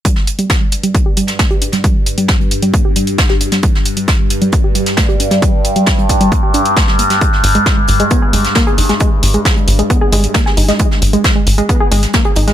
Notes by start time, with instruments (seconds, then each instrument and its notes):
0.05 synth drone G2, synth arpeggio sound G3, kick, closed hi-hat
0.16 snare
0.27 closed hi-hat
0.39 synth arpeggio sound G3, closed hi-hat
0.50 kick, snare, closed hi-hat
0.61 synth arpeggio sound G3
0.72 closed hi-hat
0.83 synth arpeggio sound G3, closed hi-hat
0.95 synth arpeggio sound A#3, kick, closed hi-hat
1.06 synth arpeggio sound G4
1.17 synth arpeggio sound G3, closed hi-hat
1.27 snare, closed hi-hat
1.39 synth arpeggio sound A3, kick, snare, closed hi-hat
1.50 synth arpeggio sound G4, closed hi-hat
1.62 synth arpeggio sound D4, closed hi-hat
1.72 synth arpeggio sound G3, snare, closed hi-hat
1.84 synth arpeggio sound G3, kick, closed hi-hat
2.06 closed hi-hat
2.18 synth arpeggio sound G3, closed hi-hat
2.28 kick, snare, closed hi-hat
2.40 synth arpeggio sound G3, closed hi-hat
2.51 closed hi-hat
2.62 synth arpeggio sound G3, closed hi-hat
2.74 synth arpeggio sound A#3, kick, closed hi-hat
2.85 synth arpeggio sound G4
2.96 synth arpeggio sound G3, closed hi-hat
3.07 closed hi-hat
3.18 synth arpeggio sound A3, kick, snare, closed hi-hat
3.29 synth arpeggio sound G4, snare
3.41 synth arpeggio sound D4, closed hi-hat
3.52 synth arpeggio sound G3, snare, closed hi-hat
3.63 synth arpeggio sound G3, kick, closed hi-hat
3.75 snare
3.85 closed hi-hat
3.97 synth arpeggio sound G3, closed hi-hat
4.08 kick, snare, closed hi-hat
4.19 synth arpeggio sound G3
4.30 closed hi-hat
4.42 synth arpeggio sound G3, closed hi-hat
4.52 synth arpeggio sound A#3, kick, closed hi-hat
4.64 synth arpeggio sound G4
4.75 synth arpeggio sound G3, closed hi-hat
4.86 snare, closed hi-hat
4.97 synth arpeggio sound A3, kick, snare, closed hi-hat
5.09 synth arpeggio sound G4, closed hi-hat
5.20 synth arpeggio sound D4, closed hi-hat
5.31 synth arpeggio sound G3, snare, closed hi-hat
5.42 synth arpeggio sound G3, kick, closed hi-hat
5.65 closed hi-hat
5.76 synth arpeggio sound G3, closed hi-hat
5.86 kick, snare, closed hi-hat
5.98 synth arpeggio sound G3, closed hi-hat
6.09 kick, closed hi-hat
6.21 synth arpeggio sound G3, closed hi-hat
6.32 synth arpeggio sound A#3, kick, closed hi-hat
6.43 synth arpeggio sound G4
6.54 synth arpeggio sound D4, closed hi-hat
6.65 closed hi-hat
6.77 synth arpeggio sound A3, kick, snare, closed hi-hat
6.88 synth arpeggio sound G3, snare
6.99 synth arpeggio sound A#3, closed hi-hat
7.10 synth arpeggio sound G3, snare, closed hi-hat
7.21 synth arpeggio sound G#3, kick, closed hi-hat
7.33 snare
7.44 analog synth bass G#1, closed hi-hat, open hi-hat
7.55 synth arpeggio sound G#3, closed hi-hat
7.66 kick, snare, closed hi-hat
7.77 synth arpeggio sound G#3
7.87 analog synth bass G#1, closed hi-hat, open hi-hat
8.00 synth arpeggio sound G#3, closed hi-hat
8.10 synth arpeggio sound B3, kick, closed hi-hat
8.22 synth arpeggio sound G#4
8.33 analog synth bass G#1, synth arpeggio sound G#3, closed hi-hat, open hi-hat
8.45 snare, closed hi-hat
8.55 synth arpeggio sound A#3, kick, snare, closed hi-hat
8.67 synth arpeggio sound G#4, closed hi-hat
8.78 analog synth bass G#1, synth arpeggio sound D#4, closed hi-hat, open hi-hat
8.89 synth arpeggio sound G#3, snare, closed hi-hat
9.00 synth arpeggio sound G#3, kick, closed hi-hat
9.23 analog synth bass G#1, closed hi-hat, open hi-hat
9.34 synth arpeggio sound G#3, closed hi-hat
9.45 kick, snare, closed hi-hat
9.57 synth arpeggio sound G#3, closed hi-hat
9.68 analog synth bass G#1, closed hi-hat, open hi-hat
9.79 synth arpeggio sound G#3, closed hi-hat
9.90 synth arpeggio sound B3, kick, closed hi-hat
10.01 synth arpeggio sound G#4
10.12 analog synth bass G#1, synth arpeggio sound G#3, closed hi-hat, open hi-hat
10.24 closed hi-hat
10.34 synth arpeggio sound A#3, kick, snare, closed hi-hat
10.46 synth arpeggio sound G#4, snare
10.57 analog synth bass G#1, synth arpeggio sound D#4, closed hi-hat, open hi-hat
10.68 synth arpeggio sound G#3, snare, closed hi-hat
10.79 synth arpeggio sound G#3, kick, closed hi-hat
10.91 snare
11.02 analog synth bass G#1, closed hi-hat, open hi-hat
11.13 synth arpeggio sound G#3, closed hi-hat
11.24 kick, snare, closed hi-hat
11.36 synth arpeggio sound G#3
11.47 analog synth bass G#1, closed hi-hat, open hi-hat
11.58 synth arpeggio sound G#3, closed hi-hat
11.69 synth arpeggio sound B3, kick, closed hi-hat
11.80 synth arpeggio sound G#4
11.91 analog synth bass G#1, synth arpeggio sound G#3, closed hi-hat, open hi-hat
12.03 snare, closed hi-hat
12.13 synth arpeggio sound A#3, kick, snare, closed hi-hat
12.24 synth arpeggio sound G#4, closed hi-hat
12.36 analog synth bass G#1, synth arpeggio sound D#4, closed hi-hat, open hi-hat
12.48 synth arpeggio sound G#3, snare, closed hi-hat